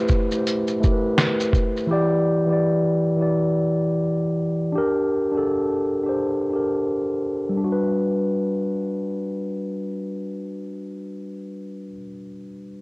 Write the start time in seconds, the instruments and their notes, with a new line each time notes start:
Already playing: tine electric piano A3 E4 G4 B4 C5
0.08 kick, shaker
0.32 tine electric piano A3 E4, shaker
0.36 tine electric piano G4 C5
0.47 closed hi-hat, shaker
0.68 shaker
0.80 tine electric piano A3 E4 G4, kick, shaker
0.86 tine electric piano A#4
0.92 tine electric piano B4
1.18 finger snap, snare, closed hi-hat, shaker
1.40 shaker
1.53 kick, shaker
1.76 shaker
1.87 tine electric piano E3 E4 G4
1.92 tine electric piano D5
2.47 tine electric piano E3 E4
2.51 tine electric piano G4 D5
3.17 tine electric piano E3 E4
3.21 tine electric piano G4 D5
4.72 tine electric piano D4 G4
4.78 tine electric piano A#4
5.32 tine electric piano D4 G4
5.37 tine electric piano A4
6.03 tine electric piano D4 G4
6.09 tine electric piano C5
6.51 tine electric piano D4 G4
6.56 tine electric piano A#4
7.49 tine electric piano G3
7.57 tine electric piano D4
7.64 tine electric piano F#4
7.72 tine electric piano B4